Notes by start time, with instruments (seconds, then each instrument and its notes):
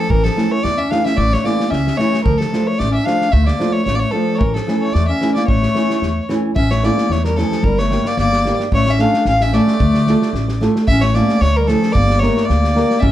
Already playing: clarinet F3, fiddle A4
0.10 upright bass A1, clarinet E3, fiddle A#4, kick
0.24 clarinet F3, fiddle A4, snare
0.36 nylon-string guitar E3 A3 C#4 E4, snare
0.51 clarinet A3, fiddle C#5
0.63 upright bass E2, clarinet A3, fiddle D5, snare
0.77 clarinet C#4, fiddle E5
0.89 nylon-string guitar E3 A3 C#4 E4, clarinet D4, fiddle F5, snare
1.04 clarinet C#4, fiddle E5, snare
1.16 upright bass A1, clarinet A3, fiddle D5, kick
1.31 clarinet A3, fiddle C#5, snare
1.44 nylon-string guitar E3 A3 C#4 E4, clarinet A#3, fiddle D5, snare
1.60 snare
1.70 upright bass C#2, clarinet C#4, fiddle E5, snare
1.87 snare
1.97 nylon-string guitar E3 A3 C#4 E4, clarinet A3, fiddle C#5, snare
2.14 snare
2.23 upright bass D2, clarinet F3, fiddle A#4, kick
2.38 clarinet F3, fiddle A4, snare
2.52 nylon-string guitar F3 A3 D4 F4, snare
2.64 clarinet A3, fiddle C#5
2.77 upright bass A1, clarinet A3, fiddle D5, snare
2.91 clarinet C#4, fiddle E5
3.04 nylon-string guitar F3 A3 D4 F4, clarinet D4, fiddle F5, snare
3.21 snare
3.31 upright bass D2, clarinet A3, fiddle E5, kick
3.45 clarinet A#3, fiddle D5, snare
3.59 nylon-string guitar F3 A3 D4 F4, snare
3.72 clarinet A3, fiddle C#5
3.85 upright bass A1, clarinet A3, fiddle C#5, snare
3.95 clarinet A#3, fiddle D5
3.99 clarinet A3, fiddle C#5
4.11 nylon-string guitar F3 A3 D4 F4, clarinet F3, fiddle A4
4.35 clarinet A3, fiddle A#4 C#5
4.40 upright bass A1, clarinet E3, kick
4.54 clarinet F3, fiddle A4, snare
4.67 nylon-string guitar E3 A3 C#4 E4, snare
4.81 clarinet A3, fiddle C#5
4.93 upright bass E2, clarinet A3, fiddle D5, snare
5.07 clarinet C#4, fiddle E5
5.20 nylon-string guitar E3 A3 C#4 E4, snare
5.34 clarinet A#3, fiddle D5, snare
5.47 upright bass A1, clarinet A3, fiddle C#5, kick
5.63 snare
5.74 nylon-string guitar E3 A3 C#4 E4, snare
5.90 snare
6.02 upright bass E2, snare
6.29 nylon-string guitar E3 A3 C#4 E4, snare
6.56 upright bass A1, clarinet C#4, fiddle E5, kick
6.71 clarinet A3, fiddle C#5, snare
6.82 nylon-string guitar E3 A3 C#4 E4, clarinet A#3, fiddle D5, snare
6.98 snare
7.10 upright bass E2, clarinet A3, fiddle C#5, snare
7.25 clarinet G3, fiddle A#4, snare
7.37 nylon-string guitar E3 A3 C#4 E4, clarinet F3, fiddle A4, snare
7.52 snare
7.63 upright bass G1, clarinet G3, fiddle A#4, kick
7.78 clarinet A3, fiddle C#5, snare
7.90 nylon-string guitar G3 A#3 D4 G4, snare
8.05 clarinet A#3, fiddle D5, snare
8.17 upright bass G1, clarinet A#3, fiddle D5, snare
8.33 snare
8.45 nylon-string guitar G3 A#3 D4 G4, snare
8.60 snare
8.72 upright bass A1, clarinet A3, fiddle C#5, kick
8.87 clarinet C#4, fiddle E5, snare
8.99 nylon-string guitar A3 C#4 E4 A4, clarinet D4, fiddle F5, snare
9.14 snare
9.25 upright bass A1, clarinet C#4, fiddle F5, snare
9.41 clarinet C#4, fiddle E5, snare
9.53 clarinet A3, nylon-string guitar A3 C#4 E4 A4, fiddle D5, snare
9.68 snare
9.80 upright bass D2, kick
9.94 snare
10.07 nylon-string guitar A3 D4 F4 A4, snare
10.22 snare
10.33 upright bass A1, snare
10.48 snare
10.61 nylon-string guitar A3 D4 F4 A4, snare
10.76 snare
10.87 upright bass A1, clarinet C#4, fiddle E5, kick
11.01 clarinet A3, fiddle C#5, snare
11.14 nylon-string guitar A3 C#4 E4 A4, clarinet A#3, fiddle D5, snare
11.29 snare
11.41 upright bass D2, clarinet A3, fiddle C#5, snare
11.57 clarinet G3, fiddle A#4
11.67 clarinet F3, nylon-string guitar A3 C#4 E4 A4, fiddle A4, snare
11.83 snare
11.92 upright bass G1, clarinet A#3, fiddle D5, kick
12.10 snare
12.19 clarinet A3, nylon-string guitar A#3 D4 G4 A#4, fiddle C#5, snare
12.37 snare
12.45 clarinet A#3, fiddle D5
12.50 upright bass D2, snare
12.64 snare
12.75 nylon-string guitar A#3 D4 G4 A#4, snare
12.90 snare
13.00 upright bass A1, clarinet C#4, fiddle E5, kick